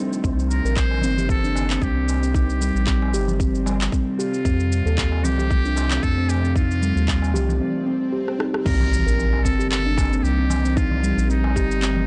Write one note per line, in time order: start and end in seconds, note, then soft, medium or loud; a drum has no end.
0.00 4.41 C3 medium
0.00 7.56 D#3 medium
0.00 0.19 F3 medium
0.00 0.19 A3 medium
0.00 7.61 C4 medium
0.00 7.61 C5 medium
0.13 shaker soft
0.23 0.61 C2 loud
0.23 4.41 G3 medium
0.23 2.32 A#3 medium
0.23 0.63 C4 medium
0.23 kick loud
0.23 shaker soft
0.39 shaker soft
0.50 0.79 A#4 medium
0.50 shaker medium
0.65 1.04 A#1 medium
0.65 1.02 A#4 medium
0.65 shaker soft
0.76 1.29 C5 loud
0.76 kick loud
0.76 clap medium
0.76 darbuka ka soft
0.76 shaker soft
0.91 darbuka tek medium
1.01 1.79 G1 medium
1.01 1.16 C4 loud
1.01 darbuka dum medium
1.01 shaker medium
1.17 1.43 G4 medium
1.17 darbuka dum medium
1.17 shaker soft
1.29 1.84 A4 loud
1.29 kick loud
1.29 shaker soft
1.44 1.51 D4 medium
1.44 shaker soft
1.55 darbuka ka soft
1.55 darbuka tek medium
1.55 shaker medium
1.70 1.81 C4 medium
1.70 clap medium
1.70 shaker soft
1.82 2.71 C2 medium
1.82 2.34 G4 medium
1.82 kick loud
1.82 shaker soft
1.96 2.21 C4 medium
2.09 darbuka tek soft
2.09 shaker medium
2.23 2.30 C4 medium
2.23 shaker soft
2.34 4.42 C4 medium
2.34 2.60 D#4 medium
2.34 3.36 G4 medium
2.34 kick loud
2.34 shaker soft
2.50 shaker soft
2.61 2.86 G3 loud
2.61 shaker medium
2.75 3.14 A#1 medium
2.75 shaker soft
2.87 3.13 C4 medium
2.87 kick loud
2.87 clap medium
2.87 shaker soft
3.02 darbuka tek medium
3.13 3.89 G1 medium
3.13 3.22 G4 loud
3.13 darbuka ka soft
3.13 shaker medium
3.28 darbuka dum medium
3.28 shaker soft
3.40 3.54 C4 medium
3.40 kick loud
3.40 shaker soft
3.55 shaker soft
3.66 3.91 G3 medium
3.66 darbuka tek medium
3.66 shaker medium
3.81 clap medium
3.81 shaker soft
3.92 4.18 C4 medium
3.92 kick loud
3.92 shaker soft
4.19 5.26 F4 medium
4.19 4.27 G4 loud
4.19 shaker medium
4.34 shaker soft
4.45 4.82 F2 medium
4.45 7.58 C3 medium
4.45 7.58 F3 medium
4.45 7.58 A3 medium
4.45 4.85 C4 medium
4.45 kick medium
4.45 shaker soft
4.60 shaker soft
4.72 shaker medium
4.85 5.25 D#2 medium
4.85 5.23 A4 medium
4.85 shaker soft
4.97 kick loud
4.97 clap medium
4.97 darbuka ka soft
4.97 shaker soft
5.12 darbuka tek medium
5.24 6.00 C2 medium
5.24 5.37 C4 loud
5.24 6.04 G4 loud
5.24 darbuka dum medium
5.24 shaker medium
5.38 5.64 G4 medium
5.38 darbuka dum medium
5.38 shaker soft
5.51 kick loud
5.51 shaker soft
5.65 5.72 D4 medium
5.65 shaker soft
5.76 darbuka ka medium
5.76 darbuka tek medium
5.76 shaker medium
5.91 6.02 C4 medium
5.91 clap medium
5.91 shaker soft
6.03 6.93 F2 medium
6.03 6.31 A4 loud
6.03 kick medium
6.03 shaker soft
6.18 6.42 C4 medium
6.29 6.56 G4 loud
6.29 darbuka tek medium
6.29 shaker medium
6.44 6.51 C4 medium
6.44 shaker soft
6.55 6.81 D#4 medium
6.55 7.57 F4 loud
6.55 kick loud
6.55 shaker soft
6.71 shaker soft
6.81 7.07 G3 loud
6.81 shaker medium
6.96 7.35 D#2 loud
6.96 shaker soft
7.08 7.33 C4 medium
7.08 kick loud
7.08 clap medium
7.08 darbuka ka soft
7.08 shaker soft
7.22 darbuka tek medium
7.22 shaker soft
7.34 7.60 C2 medium
7.34 7.42 G4 loud
7.34 darbuka ka soft
7.34 darbuka dum medium
7.34 shaker medium
7.49 darbuka dum medium
7.49 shaker soft
7.60 7.74 C4 medium
7.60 swell medium
7.86 8.00 C4 loud
8.12 8.21 G4 medium
8.28 cross-stick soft
8.39 8.52 D#4 medium
8.39 cross-stick medium
8.53 8.61 G4 medium
8.53 cross-stick medium
8.65 9.03 C2 loud
8.65 12.07 C3 medium
8.65 12.07 D#3 medium
8.65 12.07 G3 medium
8.65 10.74 A#3 medium
8.65 9.05 C4 medium
8.65 12.07 C4 medium
8.65 12.07 D#4 medium
8.65 9.45 A#4 loud
8.65 12.07 C5 medium
8.65 kick loud
8.65 crash loud
8.65 impact medium
8.65 shaker soft
8.80 darbuka dum medium
8.93 shaker medium
9.06 9.46 A#1 loud
9.06 9.44 A#4 medium
9.06 shaker soft
9.19 darbuka ka soft
9.19 shaker soft
9.33 darbuka tek medium
9.43 10.21 G1 medium
9.43 9.58 C4 medium
9.43 9.70 A4 loud
9.43 kick medium
9.43 shaker medium
9.59 9.84 G4 medium
9.59 shaker soft
9.70 10.18 A4 loud
9.70 clap medium
9.70 shaker soft
9.86 9.93 D4 medium
9.97 kick loud
9.97 darbuka ka medium
9.97 darbuka tek medium
9.97 shaker medium
10.12 10.23 C4 medium
10.12 shaker soft
10.18 10.25 A4 medium
10.23 11.13 C2 medium
10.23 10.78 G4 loud
10.23 shaker soft
10.39 10.63 C4 medium
10.50 darbuka tek medium
10.50 darbuka dum medium
10.50 shaker medium
10.64 10.71 C4 medium
10.64 shaker soft
10.76 12.07 A3 medium
10.76 11.01 D#4 medium
10.76 11.29 F4 loud
10.76 kick loud
10.76 shaker soft
10.91 darbuka dum loud
11.03 11.28 G3 loud
11.03 shaker medium
11.17 11.57 A#1 loud
11.17 shaker soft
11.29 11.54 C4 medium
11.29 12.07 D#4 medium
11.29 shaker soft
11.44 darbuka tek medium
11.56 12.07 G1 medium
11.56 11.64 G4 loud
11.56 kick medium
11.56 darbuka ka soft
11.56 shaker medium
11.71 shaker soft
11.82 11.96 C4 medium
11.82 clap medium
11.82 shaker soft
11.96 darbuka dum medium